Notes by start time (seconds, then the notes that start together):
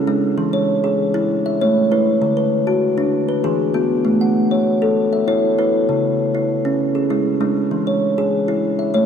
Already playing: E4
0.07 G#3 D4
0.38 E3
0.53 C#5
0.84 G#4
1.14 E4
1.46 E5
1.61 A3 C#5
1.92 E4 B4
2.22 D3
2.37 B4
2.67 F#4
2.98 D4
3.29 B4
3.44 E3 G#4
3.74 B3 F#4
4.05 A3
4.21 F#5
4.51 C#5
4.82 A4
5.13 E5
5.28 E4 C#5
5.59 E4 B4
5.89 C#3
6.35 E4
6.65 C#4
6.95 G#4
7.10 G#3 E4
7.41 G#3 D4
7.71 E3
7.87 C#5
8.18 G#4
8.48 E4
8.79 E5
8.94 A3 C#5